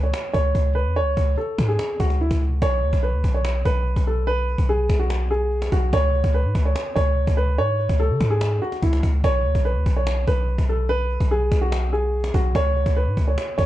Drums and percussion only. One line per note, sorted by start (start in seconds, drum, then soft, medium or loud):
0.14 cajon slap loud
0.34 cajon bass loud
0.55 cajon bass medium
0.96 cajon slap soft
1.17 cajon bass medium
1.37 cajon slap soft
1.58 cajon bass loud
1.58 cajon slap medium
1.79 cajon slap loud
2.00 cajon bass loud
2.10 cajon slap medium
2.21 cajon slap soft
2.31 cajon bass medium
2.31 cajon slap medium
2.41 cajon slap soft
2.62 cajon bass loud
2.83 cajon slap soft
2.93 cajon bass medium
3.03 cajon slap medium
3.24 cajon bass loud
3.45 cajon slap loud
3.65 cajon bass loud
3.86 cajon slap soft
3.96 cajon bass medium
4.27 cajon slap soft
4.48 cajon slap soft
4.58 cajon bass medium
4.68 cajon slap soft
4.89 cajon bass loud
4.89 cajon slap medium
5.10 cajon slap loud
5.52 cajon slap soft
5.58 cajon slap soft
5.62 cajon slap medium
5.65 cajon slap soft
5.72 cajon bass loud
5.93 cajon bass loud
6.14 cajon slap soft
6.24 cajon bass medium
6.34 cajon slap soft
6.55 cajon bass loud
6.76 cajon slap loud
6.96 cajon bass loud
7.17 cajon slap soft
7.27 cajon bass loud
7.58 cajon slap soft
7.79 cajon slap soft
7.89 cajon bass loud
7.99 cajon slap soft
8.21 cajon bass loud
8.21 cajon slap medium
8.41 cajon slap loud
8.72 cajon slap medium
8.83 cajon bass medium
8.93 cajon slap medium
9.03 cajon bass loud
9.24 cajon bass loud
9.45 cajon slap soft
9.55 cajon bass loud
9.65 cajon slap soft
9.86 cajon bass loud
10.07 cajon slap loud
10.28 cajon bass loud
10.48 cajon slap soft
10.58 cajon bass loud
10.89 cajon slap soft
11.10 cajon slap soft
11.20 cajon bass medium
11.31 cajon slap soft
11.52 cajon bass loud
11.52 cajon slap medium
11.72 cajon slap loud
12.14 cajon slap soft
12.21 cajon slap soft
12.24 cajon slap medium
12.27 cajon slap soft
12.34 cajon bass loud
12.55 cajon bass loud
12.76 cajon slap soft
12.86 cajon bass loud
12.96 cajon slap soft
13.17 cajon bass loud
13.38 cajon slap loud
13.59 cajon bass loud